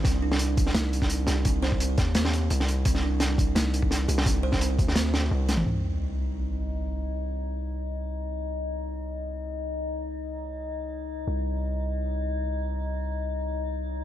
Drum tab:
HH |x---x-x-x-x-x-x-|x---x-x-x-x-x-x-|x---x-x-x-x-x-x-|x---x-x-x-----x-|
SD |o--o---oo--o--o-|--o---o-oo---o--|-o--o---o---o--o|---o---oo-o---o-|
T1 |----------------|----------------|----------------|--------------o-|
T2 |----------------|----------------|----------------|---------------o|
BD |o-----o----o----|o--o--o---------|o-----o----o----|o--o--o---------|

HH |----------------|----------------|----------------|----------------|
SD |----------------|----------------|----------------|----------------|
T1 |----------------|----------------|----------------|----------------|
T2 |----------------|----------------|----------------|----------------|
BD |----------------|----------------|----------------|----------------|

HH |----------------|----------------|
SD |----------------|----------------|
T1 |----------------|----------------|
T2 |----------------|----------------|
BD |----------------|----------------|